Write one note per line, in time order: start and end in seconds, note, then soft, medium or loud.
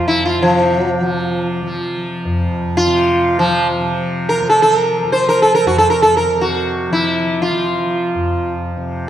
0.00 2.25 F2 medium
0.00 0.38 C3 medium
0.00 1.01 F3 medium
0.08 0.25 E4 medium
0.25 0.42 F4 medium
0.38 2.86 C3 soft
0.42 1.47 F3 medium
1.01 1.62 F3 medium
1.62 3.48 F3 medium
2.25 5.65 F2 medium
2.77 3.39 F4 loud
2.86 3.80 C3 medium
3.39 3.67 F3 medium
3.48 4.42 F3 medium
3.80 6.28 C3 medium
4.29 4.49 A#4 medium
4.42 5.04 F3 medium
4.49 4.62 A4 medium
4.62 4.75 A4 medium
4.75 5.12 A#4 medium
5.04 6.90 F3 medium
5.12 5.28 C5 medium
5.29 5.42 A#4 medium
5.42 5.54 A4 medium
5.55 5.67 A#4 medium
5.65 8.14 F2 soft
5.65 5.78 F#4 medium
5.78 5.90 A4 medium
5.90 6.02 A#4 medium
6.02 6.16 A4 medium
6.17 6.43 A#4 medium
6.28 8.76 C3 medium
6.41 6.92 F#4 medium
6.90 7.51 F3 medium
6.90 7.41 E4 medium
7.42 8.53 F4 medium
7.51 9.09 F3 medium
8.15 9.09 F2 medium
8.77 9.09 C3 soft